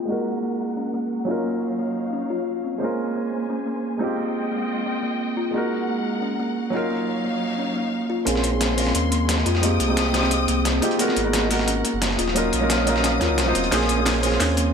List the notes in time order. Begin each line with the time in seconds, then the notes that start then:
Already playing: G#3 D#4 F4 G4
0.05 G#3 A#3 D#4 A#4 F#5
0.10 F#4 A#4
0.43 A#3
0.77 C#4
0.94 A#3
1.25 F#3 C#4 D#4 F4 C#5 F5
1.29 F4 A#4
1.45 A#3
1.79 A#3
2.13 C#4
2.30 F4
2.64 C4
2.78 G#3 A#3 C#4 C5 G#5
2.83 F4 A#4
3.15 A#3
3.49 C#4
3.66 A#3
3.98 G#3 C4 D#4 F4 D#5 G5
4.02 F4 G4
4.18 A#3
4.52 A#3
4.86 C4
5.03 A#3
5.37 F4
5.51 G#3 A#3 D#4 A#4 F#5
5.56 F#4 A#4
5.88 A#3
6.22 C#4
6.39 A#3
6.70 F#3 C#4 D#4 F4 C#5 F5
6.75 F4 A#4
6.90 A#3
7.24 A#3
7.59 C#4
7.76 A#3
8.10 F4
8.25 A#1 G#3 A#3 C4 C#4 F4 G#4 C6, closed hi-hat
8.36 snare
8.44 closed hi-hat
8.51 A#3 C4 C#4 F4 G#4
8.61 A#3, snare, closed hi-hat
8.75 A#3 C#4 C5, closed hi-hat, open hi-hat
8.79 F4 G#4
8.87 snare
8.95 D#2 C#4, closed hi-hat
9.12 A#3, closed hi-hat
9.29 snare, closed hi-hat
9.38 snare
9.46 F2 F4 G5 D#6, closed hi-hat
9.55 snare
9.61 G#3 A#3 C4 D#4 F4 G4, closed hi-hat
9.80 C2, closed hi-hat
9.87 G#3 C4 D#4 F4 G4
9.97 A#3, snare, closed hi-hat
10.11 G#3 C4 D#4, snare, closed hi-hat
10.16 F4 G4
10.23 snare
10.31 C4, closed hi-hat
10.48 C2 A#3, closed hi-hat
10.65 snare, closed hi-hat
10.81 G#3 C4 D#4 F4 G4, closed hi-hat
10.91 closed hi-hat
10.98 G#3 A#3 B3 D#4 F#4 A#4 F#5, closed hi-hat
11.08 snare
11.16 G#1, closed hi-hat
11.24 G#3 B3 D#4 F#4 A#4
11.33 A#3, snare, closed hi-hat
11.48 G#3 D#4, closed hi-hat, open hi-hat
11.52 F#4 A#4
11.59 snare
11.68 C#4, closed hi-hat
11.85 A#3, closed hi-hat
11.94 F#1
12.02 snare, closed hi-hat
12.11 snare
12.19 D#1 F#3 F4 F5 D#6, closed hi-hat
12.28 snare
12.34 F#3 A#3 C#4 D#4 F4 A#4, closed hi-hat
12.53 A#1, closed hi-hat
12.60 F#3 C#4 D#4 F4 A#4
12.70 A#3, snare, closed hi-hat
12.85 F#3 C#4 D#4 F4 A#4, closed hi-hat
12.96 snare
13.04 C#4, snare, closed hi-hat
13.20 D#2 F#3 C#4 D#4 F4 A#4, snare, closed hi-hat
13.30 C#2
13.38 A#1, snare, closed hi-hat
13.45 F#3 C#4 D#4 F4 C5
13.55 D#1 C4, closed hi-hat
13.64 closed hi-hat
13.71 A#1 A#3 C4 C#4 F4 G#4 C5 G#5, snare, closed hi-hat, riser
13.81 snare
13.89 closed hi-hat
13.97 A#3 C4 C#4 F4 G#4
14.06 A#3, snare, closed hi-hat
14.20 A#3 C#4 C5, closed hi-hat, open hi-hat
14.25 F4 G#4
14.32 snare
14.40 D#2 C#4, snare, closed hi-hat
14.57 A#3, closed hi-hat